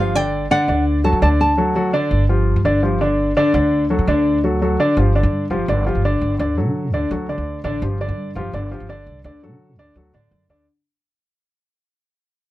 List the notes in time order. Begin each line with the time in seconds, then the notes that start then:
Already playing: G1 F3 F4 G4 F5
0.15 D3 D4 D5 G5
0.51 D3 D4 D5 F#5
0.68 D2 D3 D4 D5
1.04 F#3 F#4 A4 A5
1.12 D3
1.22 D2 D3 D4 D5 A5
1.41 A5
1.58 F#3 F#4 A4
1.75 F#3 F#4 A4
1.93 D3 D4 D5
2.11 G1
2.29 F3 F4 G4
2.56 G2
2.65 G1 D3 D4 D5
2.83 F3 F4 G4
3.01 D3 D4 D5
3.37 D3 D4 D5
3.54 D2 D3 D4 D5
3.90 F#3 F#4 A4
3.99 D3
4.07 D2 D3 D4 D5
4.44 F#3 F#4 A4
4.62 F#3 F#4 A4
4.80 D3 D4 D5
4.97 G1 F3 F4 G4
5.15 D3 D4 D5
5.23 G2
5.50 G1 F3 F4 G4
5.68 G1 D3 D4 D5
5.86 F3 F4 G4
5.95 G1
6.05 D3 D4 D5
6.21 G1
6.39 D2 D3 D4 D5
6.57 F#3 F#4 A4
6.66 D3
6.93 D2 D3 D4 D5
7.11 D2 F#3 F#4 A4
7.29 D3 D4 D5
7.38 D2
7.64 A1 D3 D4 D5
7.82 G1 F3 F4 G4
8.00 D3 D4 D5
8.08 G2
8.35 G1 F3 F4 G4
8.53 G1 D3 D4 D5
8.71 F3 F4 G4
8.80 G1
8.89 D3 D4 D5
9.06 C2
9.24 D2 D3 D4 D5
9.43 F#3 F#4 A4
9.51 D3
9.78 D2 D3 D4 D5
9.95 D2 F#3 F#4 A4
10.13 A2 D3 D4 D5
10.31 F#2
10.49 D2 D3 D4 D5